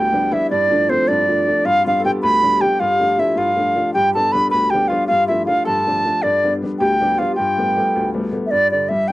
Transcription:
Already playing: upright piano D2, harp D4 E4 G4, flute G5
0.12 upright piano G3 B3 D4
0.31 upright piano G3 B3 D4, harp E4, flute E5
0.50 upright piano G2, harp D4, flute D5
0.70 upright piano F3 A3 D4, harp D4
0.89 upright piano F3 A3 D4, harp C4, flute C5
1.08 upright piano G2, harp D4, flute D5
1.29 upright piano F3 A3 D4
1.48 upright piano F3 A3 D4
1.65 upright piano G2, harp F4, flute F5
1.84 upright piano G3 B3 D4, harp F4, flute F5
2.00 harp A4
2.04 upright piano G3 B3 D4, harp G4, flute G5
2.23 upright piano D2, harp B4, flute B5
2.43 upright piano G3 B3 D4
2.61 upright piano G3 B3 D4, harp G4, flute G5
2.80 upright piano G2, harp F4, flute F5
2.99 upright piano F3 A3 D4
3.17 upright piano F3 A3 D4, harp E4, flute E5
3.36 upright piano G2, harp F4, flute F5
3.56 upright piano F3 A3 D4
3.76 upright piano F3 A3 D4
3.94 upright piano G2, harp G4, flute G5
4.14 upright piano G3 B3 D4, harp A4, flute A5
4.32 upright piano G3 B3 D4, harp B4, flute B5
4.51 upright piano D2, harp B4, flute B5
4.70 upright piano G3 B3, harp G4, flute G5
4.75 upright piano D4
4.88 upright piano G3 B3, harp F4, flute F5
4.92 upright piano D4
5.07 upright piano G2, harp F4, flute F5
5.28 upright piano F3 A3 D4, harp E4, flute E5
5.46 upright piano F3 A3 D4, harp F4, flute F5
5.65 upright piano G2, harp A4, flute A5
5.87 upright piano F3 A3 D4
6.05 upright piano F3 A3 D4
6.22 upright piano G2, harp D4, flute D5
6.44 upright piano G3 B3 D4
6.63 upright piano G3 B3 D4
6.79 upright piano D2, harp G4, flute G5
7.01 upright piano G3 B3 D4
7.18 upright piano G3 B3 D4, harp F4, flute F5
7.36 upright piano G2, harp G4, flute G5
7.58 upright piano G3 A3 B3
7.77 upright piano G3 A3 B3
7.96 upright piano D2
8.14 upright piano G3 A3 B3
8.32 upright piano G3 A3 B3
8.46 flute E5
8.51 upright piano G2, flute D5
8.71 upright piano D3, flute D5
8.89 upright piano G3, flute E5
9.08 flute G5

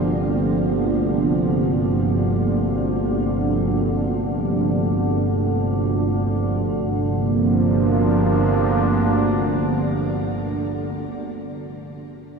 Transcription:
Already playing: synth drone G1 D2, analog synth pad G2 C3 F3 A#3 D4
6.58 synth drone G1 D2, analog synth pad G2
6.75 analog synth pad C3
6.85 analog synth pad F3
7.00 analog synth pad A#3
7.12 analog synth pad D4

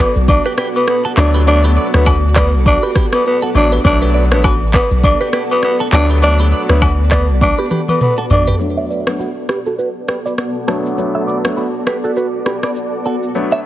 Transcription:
Already playing: ambient pad B3 F#4 A4 D5
0.00 tenor saxophone B3
0.15 sub bass B1, shaker
0.28 tenor saxophone D4, kick, high agogo, shaker
0.46 clean electric guitar G4 B4
0.57 clean electric guitar G4 B4, cross-stick, shaker
0.75 tenor saxophone B3, high agogo, shaker
0.87 tenor saxophone B3, cross-stick, shaker
1.05 clean electric guitar F#4 A4
1.17 sub bass D2, grand piano F#3 A3 B3 D4, tenor saxophone D4, ambient pad A4, cross-stick, clap, high agogo, shaker
1.34 clean electric guitar G4 B4, shaker
1.47 grand piano F#3 A3 B3 D4, tenor saxophone D4, high agogo, shaker
1.64 clean electric guitar G4 B4
1.77 clean electric guitar B4 D5, shaker
1.94 sub bass D2, grand piano F#3 A3 B3 D4, tenor saxophone B3, cross-stick, shaker
2.06 clean electric guitar F#4 B4, kick, high agogo, low woodblock, shaker
2.36 tenor saxophone B3, clean electric guitar B4 D5, kick, cross-stick, clap, open hi-hat, high agogo, shaker
2.53 sub bass B1, shaker
2.66 tenor saxophone D4, kick, high agogo, shaker
2.83 clean electric guitar G4 B4
2.95 clean electric guitar G4 B4, kick, cross-stick, shaker
3.13 tenor saxophone B3, cross-stick, high agogo, shaker
3.25 tenor saxophone B3, shaker
3.42 clean electric guitar F#4 A4
3.54 sub bass A1, grand piano F#3 A3 B3 D4, tenor saxophone D4, high agogo, shaker
3.72 clean electric guitar G4 B4, shaker
3.84 sub bass B1, grand piano F#3 A3 B3 D4, tenor saxophone D4, ambient pad D5, kick, high agogo, shaker
4.02 clean electric guitar G4 B4
4.14 clean electric guitar B4 D5, shaker
4.31 sub bass A1, grand piano F#3 A3 B3 D4, tenor saxophone B3, cross-stick, shaker
4.44 clean electric guitar F#4 B4, kick, high agogo, low woodblock, shaker
4.74 tenor saxophone B3, clean electric guitar B4 D5, kick, cross-stick, clap, open hi-hat, high agogo, shaker
4.91 sub bass B1, shaker
5.03 tenor saxophone D4, kick, high agogo, shaker
5.21 clean electric guitar G4 B4
5.33 clean electric guitar G4 B4, cross-stick, shaker
5.50 tenor saxophone B3, high agogo, shaker
5.62 tenor saxophone B3, cross-stick, shaker
5.80 clean electric guitar F#4 A4
5.92 sub bass D2, grand piano F#3 A3 B3 D4, tenor saxophone D4, cross-stick, clap, high agogo, shaker
6.10 clean electric guitar G4 B4, shaker
6.22 grand piano F#3 A3 B3 D4, tenor saxophone D4, high agogo, shaker
6.40 clean electric guitar G4 B4
6.52 clean electric guitar B4 D5, shaker
6.69 sub bass D2, grand piano F#3 A3 B3 D4, tenor saxophone B3, cross-stick, shaker
6.82 clean electric guitar F#4 B4, kick, high agogo, low woodblock, shaker
7.11 tenor saxophone B3, clean electric guitar B4 D5, kick, cross-stick, clap, open hi-hat, high agogo, shaker
7.29 sub bass B1, shaker
7.41 tenor saxophone D4, kick, high tom, high agogo, shaker
7.58 clean electric guitar G4 B4
7.70 clean electric guitar G4 B4, mid tom, shaker
7.88 tenor saxophone B3, mid tom, high agogo, shaker
8.00 tenor saxophone B3, mid tom, shaker
8.18 clean electric guitar F#4 A4
8.30 sub bass A1, tenor saxophone D4, floor tom, open hi-hat, high agogo, shaker
8.48 clean electric guitar G4 B4, floor tom, shaker
8.60 grand piano F#3 A3 B3 D4, ambient pad B3 F#4 A4 D5, shaker
8.77 clean electric guitar C#5 E5
8.90 clean electric guitar B4 D5, shaker
9.07 grand piano F#3 A3 B3 D4, cross-stick, shaker
9.19 clean electric guitar F#4 B4, shaker
9.49 clean electric guitar G4 B4, cross-stick, shaker
9.66 clean electric guitar F#4 A4, shaker
9.78 clean electric guitar F#4 B4, shaker
10.08 clean electric guitar G4 B4, cross-stick, shaker
10.26 clean electric guitar B4 D5, shaker
10.38 cross-stick, shaker
10.68 grand piano F#3 A3 B3 D4, clean electric guitar F#4 A4, ambient pad D5, cross-stick, shaker
10.86 shaker
10.97 grand piano F#3 A3 B3 D4, shaker
11.15 clean electric guitar C#5 E5
11.27 clean electric guitar B4 D5, shaker
11.44 grand piano F#3 A3 B3 D4, cross-stick, shaker
11.57 clean electric guitar F#4 B4, shaker
11.87 clean electric guitar G4 B4, cross-stick, shaker
12.04 clean electric guitar F#4 A4, shaker
12.16 clean electric guitar F#4 B4, shaker
12.46 clean electric guitar G4 B4, cross-stick, shaker
12.63 clean electric guitar B4 D5, cross-stick, shaker
12.75 shaker
13.05 clean electric guitar F#4 A4, shaker
13.23 shaker
13.35 grand piano F#3 A3 B3 D4, ambient pad D5, shaker
13.52 clean electric guitar C#5 E5

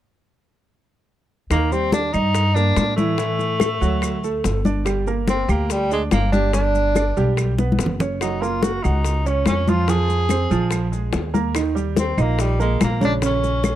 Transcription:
1.50 upright bass D#2, grand piano D#3 D#4, tenor saxophone A#3, high bongo, high conga, claves, maracas
1.72 grand piano G3 G4, tenor saxophone C4, high conga, maracas
1.92 tenor saxophone D4, high bongo, high conga, maracas
2.13 upright bass G2, tenor saxophone D#4, grand piano D#4 D#5, high conga, claves, maracas
2.35 high bongo, high conga, maracas
2.55 grand piano A#3 A#4, tenor saxophone D4, high conga, maracas
2.77 upright bass A2, high bongo, low bongo, high conga, claves, maracas
2.96 grand piano E3 E4, tenor saxophone A3, high conga, maracas
3.18 grand piano E3 E4, high bongo, high conga, maracas
3.39 high bongo, high conga, maracas
3.60 grand piano A3 A4, high bongo, high conga, claves, maracas
3.81 upright bass D2, grand piano F#3 F#4, high bongo, high conga, maracas
4.02 high bongo, high conga, claves, maracas
4.23 grand piano A3 A4, high conga, maracas
4.44 upright bass G1, high bongo, low bongo, high conga, maracas
4.65 grand piano D4 D5, high bongo, high conga, maracas
4.85 grand piano G3 G4, high bongo, high conga, claves, maracas
5.06 grand piano A#3 A#4, high conga, maracas
5.28 tenor saxophone C4, high bongo, high conga, maracas
5.48 upright bass D2, tenor saxophone A#3, grand piano G4 G5, high conga, claves, maracas
5.70 tenor saxophone G3, high bongo, high conga, maracas
5.91 tenor saxophone G#3, grand piano D4 D5, high conga, maracas
6.11 upright bass G1, tenor saxophone A#3, high bongo, low bongo, high conga, claves, maracas
6.32 grand piano G3 G4, tenor saxophone D4, high conga, maracas
6.53 grand piano G3 G4, tenor saxophone D4, high bongo, high conga, maracas
6.75 high bongo, high conga, maracas
6.95 grand piano D4 D5, high bongo, high conga, claves, maracas
7.17 upright bass B1, grand piano G3 G4, high bongo, high conga, maracas
7.37 high bongo, high conga, claves, maracas
7.58 grand piano B3 B4, high conga, maracas
7.72 high conga
7.79 upright bass F#1, high bongo, low bongo, maracas
7.86 low conga
8.00 grand piano C#4 C#5, high bongo, low conga, maracas
8.21 grand piano F#3 F#4, tenor saxophone D#4, high bongo, high conga, claves, maracas
8.42 grand piano A#3 A#4, tenor saxophone F4, high conga, maracas
8.63 tenor saxophone F#4, high bongo, high conga, maracas
8.84 upright bass C#2, tenor saxophone D#4, grand piano F#4 F#5, high conga, claves, maracas
9.04 high bongo, high conga, maracas
9.25 grand piano C#4 C#5, tenor saxophone C#4, high conga, maracas
9.46 upright bass F2, tenor saxophone C#4, high bongo, low bongo, high conga, claves, maracas
9.68 grand piano F3 F4, tenor saxophone F4, high conga, maracas
9.88 grand piano F3 F4, tenor saxophone G#4, high bongo, high conga, maracas
10.08 high bongo, high conga, maracas
10.29 grand piano C4 C5, high bongo, high conga, claves, maracas
10.50 upright bass A#1, grand piano F3 F4, high bongo, high conga, maracas
10.71 high bongo, high conga, claves, maracas
10.92 grand piano G#3 G#4, high conga, maracas
11.13 upright bass D#2, high bongo, low bongo, high conga, maracas
11.34 grand piano A#3 A#4, high bongo, high conga, maracas
11.55 grand piano D#3 D#4, high bongo, high conga, claves, maracas
11.75 grand piano G3 G4, high conga, maracas
11.96 tenor saxophone C4, high bongo, high conga, maracas
12.18 upright bass A#1, tenor saxophone A#3, grand piano D#4 D#5, high conga, claves, maracas
12.39 tenor saxophone G3, high bongo, high conga, maracas
12.60 tenor saxophone G#3, grand piano A#3 A#4, high conga, maracas
12.81 upright bass A#1, tenor saxophone A#3, high bongo, low bongo, high conga, claves, maracas
13.01 grand piano C#3 C#4, high conga, maracas
13.05 tenor saxophone D4
13.22 grand piano C#3 C#4, tenor saxophone C#4, high bongo, high conga, maracas
13.43 high bongo, high conga, maracas
13.64 grand piano G#3 G#4, high bongo, high conga, claves, maracas

